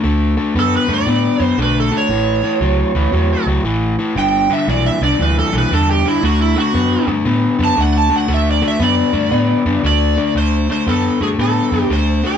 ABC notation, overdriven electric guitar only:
X:1
M:4/4
L:1/8
Q:"Swing" 1/4=116
K:D
V:1 name="Overdriven electric guitar" clef=bass
[D,A,] [D,A,] [D,B,] [D,A,] [D,B,] [D,B,] [D,A,] [D,A,] | [A,,E,] [A,,E,] [A,,F,] [A,,E,] [A,,F,] [A,,F,] [A,,E,] [A,,E,] | [G,,D,] [G,,D,] [G,,E,] [G,,D,] [G,,E,] [G,,E,] [G,,D,] [G,,D,] | [D,A,] [D,A,] [D,B,] [D,A,] [D,B,] [D,B,] [D,A,] [D,A,] |
[D,A,] [D,A,] [D,B,] [D,A,] [D,B,] [D,B,] [D,A,] [D,A,] | [D,A,] [D,A,] [D,B,] [D,A,] [D,B,] [D,B,] [D,A,] [D,A,] |]